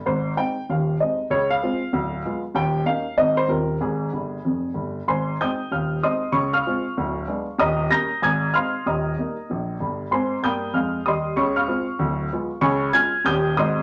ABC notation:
X:1
M:4/4
L:1/8
Q:"Swing" 1/4=191
K:Ab
V:1 name="Upright piano"
c2 g2 f2 e2 | d f6- f | g2 f2 e c B2 | A6- A z |
[cac']2 [ge'g']2 [ff']2 [ec'e']2 | [dd'] [fd'f']6- [fd'f'] | [ebe']2 [bg'b']2 [ae'a']2 [fc'f']2 | [ebe']6- [ebe'] z |
[cac']2 [ge'g']2 [ff']2 [ec'e']2 | [dd'] [fd'f']6- [fd'f'] | [K:Db] [dad']2 [af'a']2 [=ge'=g']2 [ec'e']2 |]
V:2 name="Upright piano" clef=bass
[A,,,A,,]2 [A,CE]2 [E,,,E,,]2 [A,CE]2 | [D,,D,]2 [A,CF]2 [=D,,,=D,,]2 [A,=B,F]2 | [E,,,E,,]2 [B,DE]2 [A,,,A,,A,CE]2 [E,,,E,,G,CF]2 | [A,,,A,,]2 [G,,,G,,]2 [F,,,F,,]2 [G,,,G,,]2 |
[A,,,A,,]2 [A,CE]2 [E,,,E,,]2 [A,CE]2 | [D,,D,]2 [A,CF]2 [=D,,,=D,,]2 [A,=B,=D]2 | [E,,,E,,]2 [G,B,D]2 [A,,,A,,]2 [A,CE]2 | [E,,,E,,]2 [G,B,E]2 [B,,,B,,]2 [G,,,G,,]2 |
[A,,C]2 [G,,B,]2 [F,,A,]2 [E,,G,]2 | [D,,D,]2 [A,CF]2 [=D,,,=D,,]2 [A,=B,F]2 | [K:Db] [D,,D,]2 [A,DF]2 [E,,,E,,=G,D=G]2 [A,,,A,,A,C_G]2 |]